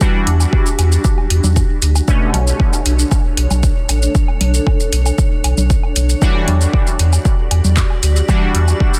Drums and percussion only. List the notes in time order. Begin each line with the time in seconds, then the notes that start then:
0.01 kick, low woodblock, shaker
0.27 closed hi-hat
0.40 low woodblock, shaker
0.53 kick
0.66 shaker
0.79 closed hi-hat, low woodblock, shaker
0.92 shaker
1.04 kick, shaker
1.18 low woodblock
1.30 closed hi-hat
1.44 low conga, shaker
1.56 kick, low woodblock, shaker
1.82 closed hi-hat, shaker
1.95 low woodblock, shaker
2.08 kick, shaker
2.34 closed hi-hat, low conga, low woodblock
2.47 shaker
2.60 kick
2.73 low woodblock, shaker
2.86 closed hi-hat, shaker
2.99 shaker
3.11 kick, low woodblock, shaker
3.37 closed hi-hat
3.51 low conga, low woodblock, shaker
3.63 kick, shaker
3.89 closed hi-hat, low woodblock, shaker
4.02 shaker
4.15 kick, shaker
4.28 low woodblock
4.41 closed hi-hat, low conga
4.54 shaker
4.67 kick, low woodblock
4.80 shaker
4.93 closed hi-hat, shaker
5.06 low woodblock, shaker
5.18 kick, shaker
5.44 closed hi-hat, low woodblock, shaker
5.58 low conga, shaker
5.70 kick, shaker
5.83 low woodblock
5.96 closed hi-hat, shaker
6.09 shaker
6.22 kick, shaker
6.35 low woodblock
6.48 closed hi-hat, low conga
6.61 shaker
6.74 kick, low woodblock
6.87 shaker
6.99 closed hi-hat, shaker
7.13 low woodblock, shaker
7.25 kick, shaker
7.51 closed hi-hat, low woodblock
7.64 low conga, shaker
7.77 kick, clap, shaker
7.90 low woodblock
8.03 closed hi-hat, shaker
8.16 shaker
8.29 kick, low woodblock, shaker
8.55 closed hi-hat
8.68 low woodblock, shaker
8.80 kick
8.94 shaker